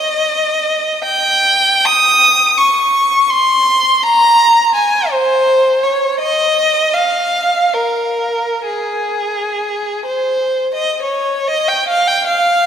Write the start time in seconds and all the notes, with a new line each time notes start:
Already playing: D#5
1.04 G5
1.85 D#6
2.58 C#6
3.30 C6
4.02 A#5
4.74 G#5
5.11 C5
5.83 C#5
6.18 D#5
6.94 F5
7.74 A#4
8.65 G#4
10.05 C5
10.73 D#5
11.02 C#5
11.47 D#5
11.68 G5
11.88 F5
12.07 G5
12.26 F5